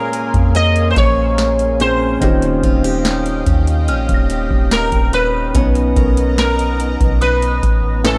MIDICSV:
0, 0, Header, 1, 8, 480
1, 0, Start_track
1, 0, Tempo, 833333
1, 1276, Time_signature, 4, 2, 24, 8
1, 4713, End_track
2, 0, Start_track
2, 0, Title_t, "Synth bell"
2, 0, Program_c, 0, 98
2, 0, Note_on_c, 0, 92, 63
2, 681, Note_off_c, 0, 92, 0
2, 2238, Note_on_c, 0, 89, 84
2, 2387, Note_on_c, 0, 94, 53
2, 3414, Note_off_c, 0, 89, 0
2, 3548, Note_off_c, 0, 94, 0
2, 4154, Note_on_c, 0, 87, 73
2, 4307, Note_on_c, 0, 90, 56
2, 4636, Note_on_c, 0, 97, 69
2, 4713, Note_off_c, 0, 87, 0
2, 4713, Note_off_c, 0, 90, 0
2, 4713, Note_off_c, 0, 97, 0
2, 4713, End_track
3, 0, Start_track
3, 0, Title_t, "Analog synth pad"
3, 0, Program_c, 1, 89
3, 0, Note_on_c, 1, 70, 84
3, 0, Note_on_c, 1, 77, 77
3, 0, Note_on_c, 1, 80, 78
3, 0, Note_on_c, 1, 84, 94
3, 1253, Note_off_c, 1, 84, 0
3, 1257, Note_off_c, 1, 80, 0
3, 1258, Note_off_c, 1, 70, 0
3, 1258, Note_off_c, 1, 77, 0
3, 1277, Note_on_c, 1, 77, 77
3, 1277, Note_on_c, 1, 79, 79
3, 1278, Note_on_c, 1, 75, 82
3, 3177, Note_off_c, 1, 75, 0
3, 3177, Note_off_c, 1, 77, 0
3, 3177, Note_off_c, 1, 79, 0
3, 3194, Note_on_c, 1, 75, 76
3, 3195, Note_on_c, 1, 59, 85
3, 3197, Note_on_c, 1, 82, 76
3, 4620, Note_off_c, 1, 75, 0
3, 4621, Note_off_c, 1, 59, 0
3, 4622, Note_off_c, 1, 82, 0
3, 4633, Note_on_c, 1, 69, 84
3, 4633, Note_on_c, 1, 76, 74
3, 4634, Note_on_c, 1, 80, 77
3, 4713, Note_off_c, 1, 69, 0
3, 4713, Note_off_c, 1, 76, 0
3, 4713, Note_off_c, 1, 80, 0
3, 4713, End_track
4, 0, Start_track
4, 0, Title_t, "Sitar"
4, 0, Program_c, 2, 104
4, 0, Note_on_c, 2, 70, 90
4, 296, Note_off_c, 2, 70, 0
4, 322, Note_on_c, 2, 75, 108
4, 505, Note_off_c, 2, 75, 0
4, 521, Note_on_c, 2, 72, 78
4, 559, Note_off_c, 2, 72, 0
4, 562, Note_on_c, 2, 73, 110
4, 1041, Note_off_c, 2, 73, 0
4, 1043, Note_on_c, 2, 72, 106
4, 2696, Note_off_c, 2, 72, 0
4, 2721, Note_on_c, 2, 70, 91
4, 2957, Note_off_c, 2, 70, 0
4, 2959, Note_on_c, 2, 71, 101
4, 3676, Note_off_c, 2, 71, 0
4, 3678, Note_on_c, 2, 70, 89
4, 4155, Note_off_c, 2, 70, 0
4, 4157, Note_on_c, 2, 71, 88
4, 4613, Note_off_c, 2, 71, 0
4, 4642, Note_on_c, 2, 69, 90
4, 4713, Note_off_c, 2, 69, 0
4, 4713, End_track
5, 0, Start_track
5, 0, Title_t, "Steel-string acoustic guitar"
5, 0, Program_c, 3, 25
5, 0, Note_on_c, 3, 58, 86
5, 0, Note_on_c, 3, 61, 64
5, 0, Note_on_c, 3, 68, 66
5, 70, Note_off_c, 3, 68, 0
5, 76, Note_on_c, 3, 68, 58
5, 313, Note_off_c, 3, 61, 0
5, 316, Note_on_c, 3, 61, 67
5, 550, Note_off_c, 3, 68, 0
5, 557, Note_on_c, 3, 68, 65
5, 1034, Note_off_c, 3, 61, 0
5, 1036, Note_on_c, 3, 61, 64
5, 1276, Note_on_c, 3, 51, 88
5, 1324, Note_off_c, 3, 68, 0
5, 1373, Note_off_c, 3, 58, 0
5, 1517, Note_on_c, 3, 65, 62
5, 1637, Note_off_c, 3, 65, 0
5, 1637, Note_on_c, 3, 67, 55
5, 1654, Note_off_c, 3, 61, 0
5, 1757, Note_on_c, 3, 61, 68
5, 1991, Note_off_c, 3, 67, 0
5, 1998, Note_on_c, 3, 67, 63
5, 2234, Note_off_c, 3, 61, 0
5, 2237, Note_on_c, 3, 61, 67
5, 2470, Note_off_c, 3, 67, 0
5, 2477, Note_on_c, 3, 67, 66
5, 2717, Note_on_c, 3, 70, 74
5, 2828, Note_off_c, 3, 70, 0
5, 2954, Note_off_c, 3, 61, 0
5, 2956, Note_on_c, 3, 61, 65
5, 3197, Note_on_c, 3, 59, 89
5, 3244, Note_off_c, 3, 67, 0
5, 3292, Note_off_c, 3, 51, 0
5, 3437, Note_on_c, 3, 70, 62
5, 3675, Note_off_c, 3, 61, 0
5, 3677, Note_on_c, 3, 63, 68
5, 3916, Note_off_c, 3, 70, 0
5, 4150, Note_off_c, 3, 63, 0
5, 4157, Note_on_c, 3, 63, 68
5, 4636, Note_on_c, 3, 57, 87
5, 4684, Note_off_c, 3, 59, 0
5, 4684, Note_off_c, 3, 63, 0
5, 4713, Note_off_c, 3, 57, 0
5, 4713, End_track
6, 0, Start_track
6, 0, Title_t, "Felt piano"
6, 0, Program_c, 4, 0
6, 0, Control_c, 4, 64, 127
6, 0, Note_on_c, 4, 46, 84
6, 0, Note_on_c, 4, 56, 74
6, 0, Note_on_c, 4, 58, 75
6, 0, Note_on_c, 4, 61, 74
6, 0, Note_on_c, 4, 68, 91
6, 1009, Note_off_c, 4, 46, 0
6, 1012, Note_off_c, 4, 58, 0
6, 1014, Note_off_c, 4, 56, 0
6, 1017, Note_off_c, 4, 61, 0
6, 1034, Note_off_c, 4, 68, 0
6, 1034, Note_on_c, 4, 46, 49
6, 1036, Note_on_c, 4, 58, 47
6, 1038, Note_on_c, 4, 60, 46
6, 1042, Note_on_c, 4, 61, 47
6, 1043, Note_on_c, 4, 68, 56
6, 1267, Note_off_c, 4, 46, 0
6, 1269, Note_on_c, 4, 51, 67
6, 1270, Note_off_c, 4, 60, 0
6, 1274, Note_off_c, 4, 61, 0
6, 1275, Note_on_c, 4, 46, 60
6, 1276, Note_off_c, 4, 58, 0
6, 1279, Note_off_c, 4, 68, 0
6, 1279, Note_on_c, 4, 60, 64
6, 1282, Note_on_c, 4, 61, 62
6, 1284, Control_c, 4, 64, 0
6, 1287, Note_on_c, 4, 65, 64
6, 1291, Note_on_c, 4, 67, 77
6, 1372, Control_c, 4, 64, 127
6, 3169, Note_off_c, 4, 51, 0
6, 3172, Note_off_c, 4, 46, 0
6, 3174, Note_off_c, 4, 60, 0
6, 3176, Note_off_c, 4, 61, 0
6, 3178, Note_off_c, 4, 65, 0
6, 3180, Note_off_c, 4, 67, 0
6, 3190, Note_on_c, 4, 47, 70
6, 3196, Note_on_c, 4, 59, 62
6, 3201, Note_on_c, 4, 61, 65
6, 3204, Control_c, 4, 64, 0
6, 3204, Note_on_c, 4, 63, 65
6, 3210, Note_on_c, 4, 73, 74
6, 3288, Control_c, 4, 64, 127
6, 4610, Note_off_c, 4, 47, 0
6, 4613, Note_off_c, 4, 59, 0
6, 4615, Note_off_c, 4, 61, 0
6, 4617, Note_off_c, 4, 63, 0
6, 4620, Note_off_c, 4, 73, 0
6, 4631, Note_on_c, 4, 45, 71
6, 4632, Note_on_c, 4, 57, 67
6, 4636, Note_on_c, 4, 61, 65
6, 4638, Note_on_c, 4, 80, 65
6, 4640, Note_on_c, 4, 71, 79
6, 4644, Control_c, 4, 64, 0
6, 4713, Note_off_c, 4, 45, 0
6, 4713, Note_off_c, 4, 57, 0
6, 4713, Note_off_c, 4, 61, 0
6, 4713, Note_off_c, 4, 71, 0
6, 4713, Note_off_c, 4, 80, 0
6, 4713, End_track
7, 0, Start_track
7, 0, Title_t, "808-style bass"
7, 0, Program_c, 5, 38
7, 198, Note_on_c, 5, 41, 104
7, 542, Note_off_c, 5, 41, 0
7, 557, Note_on_c, 5, 34, 103
7, 1253, Note_off_c, 5, 34, 0
7, 1278, Note_on_c, 5, 27, 114
7, 1507, Note_off_c, 5, 27, 0
7, 1518, Note_on_c, 5, 27, 109
7, 1977, Note_off_c, 5, 27, 0
7, 1998, Note_on_c, 5, 39, 102
7, 2237, Note_on_c, 5, 34, 94
7, 2245, Note_off_c, 5, 39, 0
7, 2350, Note_off_c, 5, 34, 0
7, 2357, Note_on_c, 5, 27, 101
7, 2587, Note_off_c, 5, 27, 0
7, 2596, Note_on_c, 5, 27, 93
7, 2826, Note_off_c, 5, 27, 0
7, 2837, Note_on_c, 5, 27, 105
7, 3182, Note_off_c, 5, 27, 0
7, 3196, Note_on_c, 5, 35, 111
7, 3426, Note_off_c, 5, 35, 0
7, 3436, Note_on_c, 5, 35, 111
7, 4013, Note_off_c, 5, 35, 0
7, 4037, Note_on_c, 5, 35, 96
7, 4382, Note_off_c, 5, 35, 0
7, 4397, Note_on_c, 5, 33, 111
7, 4713, Note_off_c, 5, 33, 0
7, 4713, End_track
8, 0, Start_track
8, 0, Title_t, "Drums"
8, 76, Note_on_c, 9, 42, 74
8, 134, Note_off_c, 9, 42, 0
8, 196, Note_on_c, 9, 36, 103
8, 197, Note_on_c, 9, 42, 57
8, 254, Note_off_c, 9, 36, 0
8, 254, Note_off_c, 9, 42, 0
8, 316, Note_on_c, 9, 42, 66
8, 374, Note_off_c, 9, 42, 0
8, 436, Note_on_c, 9, 42, 57
8, 494, Note_off_c, 9, 42, 0
8, 555, Note_on_c, 9, 42, 62
8, 556, Note_on_c, 9, 36, 97
8, 613, Note_off_c, 9, 36, 0
8, 613, Note_off_c, 9, 42, 0
8, 796, Note_on_c, 9, 38, 117
8, 796, Note_on_c, 9, 42, 69
8, 854, Note_off_c, 9, 38, 0
8, 854, Note_off_c, 9, 42, 0
8, 917, Note_on_c, 9, 42, 52
8, 975, Note_off_c, 9, 42, 0
8, 1037, Note_on_c, 9, 42, 62
8, 1095, Note_off_c, 9, 42, 0
8, 1277, Note_on_c, 9, 36, 107
8, 1277, Note_on_c, 9, 42, 79
8, 1334, Note_off_c, 9, 36, 0
8, 1335, Note_off_c, 9, 42, 0
8, 1396, Note_on_c, 9, 42, 58
8, 1454, Note_off_c, 9, 42, 0
8, 1517, Note_on_c, 9, 36, 102
8, 1518, Note_on_c, 9, 42, 67
8, 1574, Note_off_c, 9, 36, 0
8, 1575, Note_off_c, 9, 42, 0
8, 1638, Note_on_c, 9, 42, 75
8, 1696, Note_off_c, 9, 42, 0
8, 1756, Note_on_c, 9, 42, 49
8, 1757, Note_on_c, 9, 38, 117
8, 1814, Note_off_c, 9, 38, 0
8, 1814, Note_off_c, 9, 42, 0
8, 1876, Note_on_c, 9, 42, 59
8, 1934, Note_off_c, 9, 42, 0
8, 1996, Note_on_c, 9, 36, 98
8, 1996, Note_on_c, 9, 42, 71
8, 2053, Note_off_c, 9, 42, 0
8, 2054, Note_off_c, 9, 36, 0
8, 2116, Note_on_c, 9, 42, 57
8, 2174, Note_off_c, 9, 42, 0
8, 2236, Note_on_c, 9, 42, 59
8, 2293, Note_off_c, 9, 42, 0
8, 2356, Note_on_c, 9, 36, 106
8, 2356, Note_on_c, 9, 42, 57
8, 2413, Note_off_c, 9, 42, 0
8, 2414, Note_off_c, 9, 36, 0
8, 2475, Note_on_c, 9, 42, 67
8, 2533, Note_off_c, 9, 42, 0
8, 2596, Note_on_c, 9, 36, 96
8, 2653, Note_off_c, 9, 36, 0
8, 2715, Note_on_c, 9, 38, 114
8, 2715, Note_on_c, 9, 42, 73
8, 2773, Note_off_c, 9, 38, 0
8, 2773, Note_off_c, 9, 42, 0
8, 2835, Note_on_c, 9, 42, 53
8, 2836, Note_on_c, 9, 36, 99
8, 2893, Note_off_c, 9, 36, 0
8, 2893, Note_off_c, 9, 42, 0
8, 2956, Note_on_c, 9, 42, 63
8, 3014, Note_off_c, 9, 42, 0
8, 3194, Note_on_c, 9, 42, 84
8, 3195, Note_on_c, 9, 36, 117
8, 3252, Note_off_c, 9, 42, 0
8, 3253, Note_off_c, 9, 36, 0
8, 3314, Note_on_c, 9, 42, 57
8, 3372, Note_off_c, 9, 42, 0
8, 3435, Note_on_c, 9, 36, 101
8, 3435, Note_on_c, 9, 42, 64
8, 3493, Note_off_c, 9, 36, 0
8, 3493, Note_off_c, 9, 42, 0
8, 3556, Note_on_c, 9, 42, 73
8, 3613, Note_off_c, 9, 42, 0
8, 3676, Note_on_c, 9, 38, 111
8, 3676, Note_on_c, 9, 42, 49
8, 3733, Note_off_c, 9, 42, 0
8, 3734, Note_off_c, 9, 38, 0
8, 3796, Note_on_c, 9, 42, 59
8, 3854, Note_off_c, 9, 42, 0
8, 3915, Note_on_c, 9, 42, 72
8, 3973, Note_off_c, 9, 42, 0
8, 4036, Note_on_c, 9, 36, 99
8, 4036, Note_on_c, 9, 42, 55
8, 4093, Note_off_c, 9, 36, 0
8, 4094, Note_off_c, 9, 42, 0
8, 4156, Note_on_c, 9, 42, 62
8, 4213, Note_off_c, 9, 42, 0
8, 4276, Note_on_c, 9, 42, 54
8, 4334, Note_off_c, 9, 42, 0
8, 4396, Note_on_c, 9, 36, 95
8, 4396, Note_on_c, 9, 42, 65
8, 4453, Note_off_c, 9, 36, 0
8, 4453, Note_off_c, 9, 42, 0
8, 4635, Note_on_c, 9, 38, 119
8, 4635, Note_on_c, 9, 42, 74
8, 4692, Note_off_c, 9, 38, 0
8, 4692, Note_off_c, 9, 42, 0
8, 4713, End_track
0, 0, End_of_file